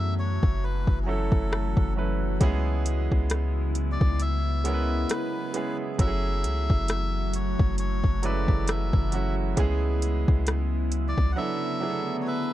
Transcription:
Already playing: F#2 E3 F#3 A3 C#4 E4 F#4 G#4 B4 E5
0.19 C#5
0.43 F#1, kick
0.64 B4
0.87 F#1, kick
1.03 F#3 G#4
1.07 A3 C#4 E4 A4
1.32 F#1, kick
1.53 cross-stick
1.77 F#1, kick
1.96 F#3 A3 C#4 E4 B4
2.40 C#2 C#3 G#3 B3 C#4 E4 G#4, kick, closed hi-hat
2.86 closed hi-hat
3.12 C#2, kick
3.30 cross-stick, closed hi-hat
3.75 closed hi-hat
3.92 D5
4.01 C#2, kick
4.20 E5, closed hi-hat
4.64 G#3 B3 C#4 E4 A#4, closed hi-hat
4.74 B4
5.09 B4, cross-stick, closed hi-hat
5.53 G#3 B3 C#4 E4 G#4, closed hi-hat
5.98 F#1 E3 F#3 A3 C#4 E4 F#4 E5, kick, closed hi-hat
6.07 G#4
6.44 C#2, closed hi-hat
6.70 F#1, kick
6.88 cross-stick, closed hi-hat
7.33 C#5, closed hi-hat
7.59 F#1, kick
7.78 C#5, closed hi-hat
8.04 F#1, kick
8.23 C#3 F#3 G#3 E4 B4 D5, closed hi-hat
8.30 A3
8.48 F#1, kick
8.68 E5, cross-stick, closed hi-hat
8.93 F#1, kick
9.12 F#3 A3 C#4 E4 F#4, closed hi-hat
9.57 C#2 C#3 G#3 B3 C#4 E4 G#4, kick, closed hi-hat
10.02 closed hi-hat
10.28 C#2, kick
10.47 cross-stick, closed hi-hat
10.92 closed hi-hat
11.08 D5
11.18 C#2, kick
11.32 D3 F#3 A3 F#5
11.36 B3 D4 E4 A4 E5
11.80 F#3 B3 D4 E4 G#4
11.90 A4
12.22 C#5
12.27 B4 E5

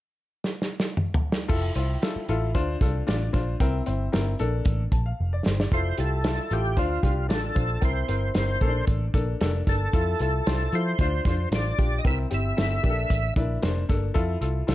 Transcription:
0.44 snare
0.62 snare
0.80 snare
0.97 mid tom
1.14 floor tom
1.32 snare
1.48 F1 E4 F4 A4, kick, crash
1.75 C2 E4 F4 C5, closed hi-hat
2.02 E4 F4 A4, snare, closed hi-hat
2.16 muted picked electric bass stroke
2.28 A1 E4 F4 A4, closed hi-hat
2.55 D2 D4 F4 C5, kick, closed hi-hat
2.81 C2 D4 F4 A4, kick, snare, closed hi-hat
3.07 A1 D4 F4 D5, snare, closed hi-hat
3.33 A#1 D4 F4 C5, kick, snare, closed hi-hat
3.60 C2 C4 E4 A#4, kick, closed hi-hat
3.86 G1 C4 E4 C5, closed hi-hat
4.12 G1 C4 E4 A#4, snare, closed hi-hat
4.39 A#1 A#3 D4 A4, closed hi-hat
4.65 A1, kick, closed hi-hat
4.92 A#1 A5, kick, closed hi-hat
5.06 F5
5.20 F1
5.33 D5
5.46 G1 C5, snare
5.60 D5, snare
5.72 F1 E4 F4 A4 C5, kick, closed hi-hat
5.97 C2 E4 F4 G4 A4, closed hi-hat
6.24 E4 F4 A4, snare, closed hi-hat
6.51 A1 E4 F4 G4 A4, closed hi-hat
6.77 D2 D4 F4 C5, kick, closed hi-hat
7.03 C2 D4 F4 G4, kick, closed hi-hat
7.29 A1 D4 F4 A4 D5, snare, closed hi-hat
7.55 A#1 D4 F4 C5, kick, closed hi-hat
7.81 C2 C4 E4 A#4 C5, kick, closed hi-hat
8.08 G1 C4 E4 A#4, closed hi-hat
8.35 G1 C4 E4 A#4, snare, closed hi-hat
8.61 A#1 A#3 C#4 A4, kick, closed hi-hat
8.68 D4
8.87 A1, kick, closed hi-hat
9.14 A#1 A#3 D4 A4, kick, closed hi-hat
9.41 F1 A#3 D4 A4, snare, closed hi-hat
9.67 G1 A#3 D4 A4, kick, snare, closed hi-hat
9.93 F2 E4 F4 A4, kick, closed hi-hat
10.19 C2 E4 F4 A4, closed hi-hat
10.47 C2 E4 F4 C5, snare, closed hi-hat
10.72 F3 E4 F4 A4 C5, closed hi-hat
10.99 D2 D4 F4 C5, kick, closed hi-hat
11.25 F2 D4 F4 C5, kick, snare, closed hi-hat
11.52 A1 D4 F4 C5 D5, snare, closed hi-hat
11.78 A#1 D4 F4 G4, kick, closed hi-hat
11.98 D#5
12.04 C2 C4 E4 A#4 E5, kick, closed hi-hat
12.30 G1 C4 E4 G4 E5, closed hi-hat
12.57 G1 C4 E4 A4, snare, closed hi-hat
12.83 A#1 A#3 D4 G4, kick, closed hi-hat
12.90 A4
13.10 A1, kick, closed hi-hat
13.36 A#1 A#3 D4 E4, kick, closed hi-hat
13.62 F1 A#3 D4 C5, snare, closed hi-hat
13.89 G1 A#3 D4 A4, kick, snare, closed hi-hat
14.14 F2 E4 F4 A4, kick, closed hi-hat
14.41 C2 E4 F4 A4, closed hi-hat
14.67 C2 E4 F4 A4, snare, closed hi-hat

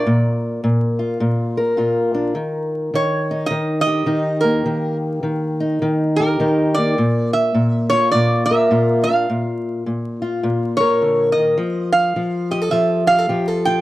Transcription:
Already playing: A#4 D5
0.06 A#2
0.64 A#2
0.99 F4
1.20 A#2
1.57 A#4
1.77 A#2 F4
2.14 D4
2.35 D#3
2.94 D#3 C#5
3.31 D#4
3.46 D#5
3.51 D#3
3.81 D#5
3.87 G4
4.06 D#3 D#4
4.41 A#3 A#4
4.66 D#3
5.23 D#3
5.60 D#4
5.82 D#3
6.16 G4 A#4
6.40 D#3 D#4
6.74 A#3 D5
6.98 A#2
7.33 E5
7.54 A#2
7.90 F4 C#5
8.11 A#2 D5
8.46 E5
8.51 A#4
8.71 A#2 F4
9.04 F5
9.09 D4
9.30 A#2
9.86 A#2
10.22 F4
10.43 A#2
10.77 A#4 C#5
11.02 D3
11.32 D#3 D#5
11.58 F3
11.92 F5
12.16 F3
12.51 G4 D#5
12.61 A4
12.71 F3 E5
13.07 G4 F5
13.19 A4
13.29 F3 G4
13.48 A4
13.65 F4 G5

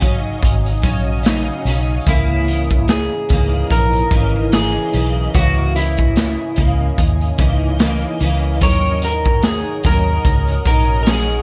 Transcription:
Already playing: G#1 C#5 F#5 G#5 D#6
0.00 C#3 F#3 C#4 D#4, kick, closed hi-hat
0.42 G#1, kick, closed hi-hat
0.66 closed hi-hat
0.82 A#1 C#3 F#3 C#4 D#4, kick, closed hi-hat
1.23 C#3 F#3 C#4 D#4, snare, closed hi-hat, tambourine
1.65 B1 C#3 F#3 C#4, closed hi-hat
1.69 D#4
2.06 C#2 C#3 E3 A#3 E4 D#5 A#5, kick, closed hi-hat
2.48 closed hi-hat
2.70 kick, closed hi-hat
2.88 G#4, snare, closed hi-hat, tambourine
3.29 C#2 C#3 E3 A#3, kick, snare, closed hi-hat
3.33 D#4
3.70 A#1 A#4, kick, closed hi-hat
3.93 closed hi-hat
4.10 G#1 C#3 E3 A#3 D#4, kick, closed hi-hat
4.52 C#3 E3 A#3 D#4 G#4, snare, closed hi-hat, tambourine
4.93 B1 C#3 E3 A#3 D#4, closed hi-hat
5.34 C#2 C#3 E3 A#3 F#4 G#5, kick, closed hi-hat
5.76 E4, closed hi-hat
5.97 kick, closed hi-hat
6.16 snare, closed hi-hat, tambourine
6.56 C#2 C#3 A#3, kick, closed hi-hat
6.98 D#2, kick, closed hi-hat
7.21 closed hi-hat
7.38 C#2 C#3 E3 A#3 D#4, kick, closed hi-hat
7.79 C#3 E3 A#3, snare, closed hi-hat, tambourine
7.83 D#4
8.20 C#2 C#3 E3 A#3 D#4, closed hi-hat
8.61 D#2 D#3 F#3 C#4 D#4 A#4 C#5 F#5 A#5 D#6, kick, closed hi-hat
9.02 A#4, closed hi-hat
9.24 kick, closed hi-hat
9.42 G#4, snare, closed hi-hat, tambourine
9.83 D#2 F#3 C#4 D#4 A#4, kick, snare, closed hi-hat
9.87 A#4
10.25 C#2, kick, closed hi-hat
10.48 closed hi-hat
10.65 A#1 F#3 C#4 D#4 A#4, kick, closed hi-hat
11.03 F#3 A#4, closed hi-hat, tambourine
11.07 C#4 D#4 G#4 A#4, snare

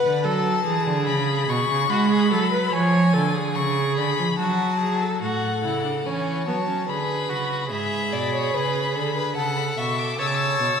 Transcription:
Already playing: B4 F#5
0.04 D3
0.24 F#3 A4 A5
0.65 E3 G#4
0.87 D3
1.07 C#3 B5
1.49 B2 C#6
1.69 C#3
1.90 G#3 F#4 B5
2.10 G#4
2.31 F#3 A4
2.52 B4
2.72 F3 C#5 G#5
3.14 D3 A4
3.34 G#4
3.55 C#3 C#6
3.97 D3 B5
4.18 F3
4.39 F#3 F#4 A5
4.80 G#4
5.01 A4
5.22 A2 F#4 A4 F#5
5.64 C#3 E4
5.85 D4
6.05 E3 C#4 C#5 G#5
6.47 F#3 B3 A5
6.68 C#4
6.88 D3 G#4 B4 B5
7.29 C#3 F#4
7.71 G#2 G#4 E5 B5
8.13 B2 D5
8.34 C#5
8.54 C#3 B4
8.95 D3 A4
9.16 B4
9.36 C#3 A4 F#5 A5
9.57 B5
9.78 B2 E5 C#6
9.99 D6
10.19 C#3 C#5 A5 E6
10.27 D6
10.34 E6
10.60 B2

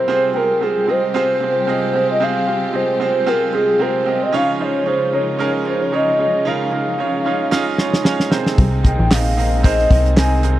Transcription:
Already playing: C4 E4 G4 A#4 C5
0.08 C3 G3 G#3 C4 F4 G4 G#4 C5
0.34 C4 F4 G4 G#4 A#4
0.61 C4 F4 G4 G#4 C5
0.88 C4 F4 G4 G#4 C5 D#5
1.14 C4 F4 G4 G#4 C5
1.41 C4 F4 G4 G#4 C5
1.67 C4 F4 G4 G#4 C5 D#5
1.94 C4 F4 G4 G#4 C5
2.11 D#5
2.20 C4 F4 G4 G#4 C5 F5
2.47 C4 F4 G4 G#4 C5
2.73 C4 F4 G4 G#4 C5 D#5
3.00 C4 F4 G4 G#4 C5
3.26 C4 F4 G4 G#4 A#4 C5
3.53 C4 F4 G4 G#4 D#5
3.79 C4 F4 G4 G#4 A#4 C5
4.06 C4 F4 G4 G#4 D#5
4.23 D#5
4.33 C#3 F3 C#4 D#4 F4 G#4 C#5 F5
4.59 C#4 D#4 F4 G#4 C5 C#5
4.86 C#4 D#4 F4 G#4 C5 C#5
5.12 C#4 D#4 F4 G#4 A#4 C#5
5.39 C#4 D#4 F4 G#4 A#4 C#5
5.65 C#4 D#4 F4 G#4 C5 C#5
5.82 C#5
5.92 C#4 D#4 F4 G#4 C#5 D#5
6.19 C#4 D#4 F4 G#4 C#5 D#5
6.45 C#3 C#4 D#4 F4 G#4 A#4 F5
6.71 C#4 D#4 F4 G#4 A#4
6.98 C#4 D#4 F4 G#4 C#5
7.25 C#4 D#4 F4 G#4 C#5
7.51 C#4 D#4 F4 G#4 D#5, snare
7.78 C#4 D#4 F4 G#4 C#5 F5, snare
7.94 snare
8.04 C#4 D#4 F4 G#4 C#5 G#5, snare
8.20 snare
8.31 C3 D#3 A#3 C4 D#4 G#4 A#4 C5 A#5, snare
8.46 snare
8.58 C2, kick, open hi-hat
8.84 C4 D#4 G#4 A#4 D#5 G5, kick, hi-hat pedal, open hi-hat
8.99 A#1
9.11 C4 D#4 G#4 A#4 D#5 F5, snare, clap, hi-hat pedal, open hi-hat
9.37 C4 D#4 G#4 A#4 D#5, hi-hat pedal, open hi-hat
9.63 C4 D#4 G#4 A#4 C5 D#5, kick, hi-hat pedal, open hi-hat
9.79 snare, open hi-hat
9.90 C2 C4 D#4 G#4 A#4 D#5, kick, hi-hat pedal, open hi-hat
10.05 hi-hat pedal
10.17 C4 D#4 G#4 A#4 D#5 G#5, snare, clap, hi-hat pedal, open hi-hat
10.43 C3 C4 D#4 G#4 A#4 C5, hi-hat pedal, open hi-hat

